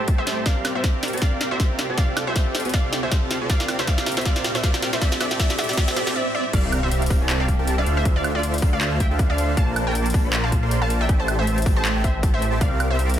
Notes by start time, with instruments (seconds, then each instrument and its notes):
Already playing: ambient pad A2 G3 C4, harp A4 D5 E5 G5, synth pluck C5 E5
0.00 supersaw synth A3 G4 C5 E5 A5, harp G4
0.08 harp C5, kick, closed hi-hat
0.18 supersaw synth A3 G4 C5 E5 A5, synth pluck C5 E5
0.27 harp A4, snare, closed hi-hat
0.37 harp A5
0.46 ambient pad C3 A#3 F4, supersaw synth C4 G4 A#4 D5 F5, synth pluck D5 F5, kick, snare, closed hi-hat, riser
0.56 harp G4
0.65 snare, closed hi-hat, high woodblock
0.75 supersaw synth C4 G4 A#4 D5 F5, synth pluck C5 E5, harp C5
0.84 harp G4, kick, snare, closed hi-hat
1.03 harp F5, snare, open hi-hat
1.08 closed hi-hat
1.13 supersaw synth C4 G4 A#4 D5 A5, harp G4, closed hi-hat
1.18 closed hi-hat
1.22 supersaw synth C4 G4 A#4 D5 F5, synth pluck D5 F5, kick, snare, closed hi-hat
1.33 harp G4
1.41 snare, closed hi-hat
1.51 supersaw synth C4 G4 A#4 D5 F5, synth pluck C5 E5, harp C5
1.60 harp G4, kick, snare, closed hi-hat
1.79 ambient pad D2, harp F5, snare, closed hi-hat
1.89 supersaw synth C4 G4 A4 D5 A5, harp G4
1.98 supersaw synth C4 G4 A4 D5 F5, synth pluck D5 F5, kick, snare, closed hi-hat
2.08 harp G4
2.17 snare, closed hi-hat, high woodblock
2.27 supersaw synth C4 G4 A4 D5 F5, synth pluck C5 E5, harp C5
2.36 harp G4, kick, snare, closed hi-hat
2.55 harp F5, snare, open hi-hat
2.60 closed hi-hat
2.65 supersaw synth C4 G4 A4 D5 A5, harp G4, closed hi-hat
2.69 closed hi-hat
2.74 supersaw synth C4 G4 A4 D5 F5, synth pluck D5 F5, kick, snare, closed hi-hat
2.85 harp G4
2.93 snare, closed hi-hat
3.03 supersaw synth C4 G4 A4 D5 F5, synth pluck C5 E5, harp C5
3.12 harp G4, kick, snare, closed hi-hat
3.31 harp F5, snare, closed hi-hat
3.41 supersaw synth C4 G4 A4 D5 A5, harp G4
3.50 ambient pad A#2 A3 D4, supersaw synth C4 G4 A#4 D5 F5, synth pluck D5 F5, kick, snare, closed hi-hat
3.60 harp G4, snare
3.68 snare, closed hi-hat, high woodblock
3.79 supersaw synth C4 G4 A#4 D5 F5, synth pluck C5 E5, harp C5, snare
3.87 supersaw synth C4 G4 A#4 D5 F5, synth pluck D5 F5, kick, snare, closed hi-hat
3.98 harp G4, snare
4.06 snare, open hi-hat
4.12 closed hi-hat
4.17 supersaw synth C4 G4 A#4 D5 F5, harp C5, synth pluck C5 E5, snare, closed hi-hat
4.21 closed hi-hat
4.25 supersaw synth C4 G4 A#4 D5 F5, synth pluck D5 F5, kick, snare, closed hi-hat
4.36 harp G4, snare
4.44 snare, closed hi-hat
4.55 supersaw synth C4 G4 A#4 D5 F5, synth pluck C5 E5, harp C5, snare
4.63 supersaw synth C4 G4 A#4 D5 F5, synth pluck D5 F5, kick, snare, closed hi-hat
4.74 harp G4, snare
4.82 snare, closed hi-hat
4.93 supersaw synth C4 G4 A#4 D5 F5, synth pluck C5 E5, harp C5, snare
5.01 ambient pad A2 G3 C4, supersaw synth C4 G4 A4 D5 E5, synth pluck D5 E5, kick, snare, closed hi-hat
5.12 harp G4, snare
5.20 supersaw synth C4 G4 A4 D5 E5, synth pluck D5 E5, snare, closed hi-hat, high woodblock
5.31 harp G4, snare
5.39 supersaw synth C4 G4 A4 D5 E5, synth pluck D5 E5, kick, snare, closed hi-hat
5.50 harp G4, snare
5.58 supersaw synth C4 G4 A4 D5 E5, synth pluck D5 E5, snare, open hi-hat
5.64 closed hi-hat
5.69 harp G4, snare, closed hi-hat
5.73 closed hi-hat
5.77 supersaw synth C4 G4 A4 D5 E5, synth pluck D5 E5, kick, snare, closed hi-hat, swell
5.88 harp G4, snare
5.96 supersaw synth C4 G4 A4 D5 E5, synth pluck D5 E5, snare, closed hi-hat
6.07 harp G4, snare
6.16 synth pluck D5 E5
6.35 synth pluck D5 E5
6.53 detuned saw bass C2, supersaw synth C4 G4 A#4 D5 F5, synth pluck D5 F5, digital synth lead F5, kick, closed hi-hat, crash, impact
6.64 harp G4
6.72 closed hi-hat, high woodblock
6.83 supersaw synth C4 G4 A#4 D5 F5, harp C5, synth pluck C5 E5, digital synth lead F5
6.92 harp G4, closed hi-hat
7.02 closed hi-hat
7.06 closed hi-hat
7.10 harp F5, kick, open hi-hat
7.21 supersaw synth C4 G4 A#4 D5 A5, harp G4, digital synth lead A5
7.30 clap, closed hi-hat
7.40 synth pluck D5 F5, harp G5
7.48 kick, closed hi-hat
7.59 supersaw synth C4 G4 A#4 D5 A5, harp G4, digital synth lead A5
7.67 harp C5, closed hi-hat
7.78 supersaw synth D4 A4 C5 E5 F5, synth pluck D5 F5, digital synth lead F5
7.86 detuned saw bass D2, harp A4, closed hi-hat
7.97 synth pluck C5 E5, harp F5
8.05 supersaw synth D4 A4 C5 E5 F5, digital synth lead F5, kick, closed hi-hat
8.16 harp A4, synth pluck D5 F5
8.24 closed hi-hat, high woodblock
8.35 supersaw synth D4 A4 C5 E5 F5, synth pluck F4 D5, harp D5, digital synth lead F5
8.43 harp A4, closed hi-hat
8.54 closed hi-hat
8.58 closed hi-hat
8.62 harp F5, kick, open hi-hat
8.73 supersaw synth D4 A4 C5 E5 F5, harp A4, synth pluck D5 F5, digital synth lead F5
8.81 clap, closed hi-hat
8.92 harp A5
9.00 synth pluck E5 G5, kick, closed hi-hat
9.11 supersaw synth D4 A4 C5 E5 F5, harp A4, digital synth lead F5
9.19 harp D5, kick, closed hi-hat
9.30 supersaw synth D4 A4 C5 E5 F5, synth pluck D5 F5, digital synth lead F5
9.38 harp A4, closed hi-hat
9.49 harp F5
9.57 detuned saw bass A#1, supersaw synth A#3 A#4 C5 D5 A5, synth pluck F5 A5, digital synth lead A5, kick, closed hi-hat
9.68 harp A4
9.76 closed hi-hat, high woodblock
9.87 supersaw synth A#3 A#4 C5 D5 A5, synth pluck A#4 G5, harp D5, digital synth lead A5
9.95 harp A4, closed hi-hat
10.06 closed hi-hat
10.10 closed hi-hat
10.14 harp F5, kick, open hi-hat
10.25 supersaw synth A#3 A#4 C5 D5 C6, harp A4, digital synth lead C6
10.33 clap, closed hi-hat
10.44 synth pluck F5 A5, harp A5
10.52 kick, closed hi-hat
10.63 supersaw synth A#3 A#4 C5 D5 C6, harp A4, digital synth lead C6
10.71 harp D5, closed hi-hat
10.82 supersaw synth A#3 A#4 C5 D5 A5, synth pluck F5 A5, digital synth lead A5
10.90 harp A4, closed hi-hat
11.01 synth pluck E5 G5, harp F5
11.09 detuned saw bass A1, supersaw synth A3 G4 C5 E5 A5, digital synth lead A5, kick, closed hi-hat
11.20 harp G4, synth pluck C5 A5
11.28 closed hi-hat, high woodblock
11.39 supersaw synth A3 G4 C5 E5 A5, synth pluck C5 E5, harp C5, digital synth lead A5
11.47 harp G4, closed hi-hat
11.58 closed hi-hat
11.62 kick, closed hi-hat
11.66 harp E5, open hi-hat
11.76 supersaw synth A3 G4 C5 E5 A5, harp G4, synth pluck C5 A5, digital synth lead A5
11.85 clap, closed hi-hat
11.96 harp G5
12.04 synth pluck C5 E5, kick, closed hi-hat
12.15 harp G4
12.23 supersaw synth A3 G4 C5 E5 A5, harp C5, digital synth lead A5, kick, closed hi-hat
12.34 synth pluck C5 E5
12.42 harp A4, closed hi-hat
12.53 harp A5
12.61 detuned saw bass C2, supersaw synth C4 G4 A#4 D5 F5, synth pluck D5 F5, digital synth lead F5, kick, closed hi-hat
12.72 harp G4
12.80 closed hi-hat, high woodblock
12.90 supersaw synth C4 G4 A#4 D5 F5, synth pluck C5 E5, harp C5, digital synth lead F5
12.99 harp G4, closed hi-hat
13.10 closed hi-hat
13.14 closed hi-hat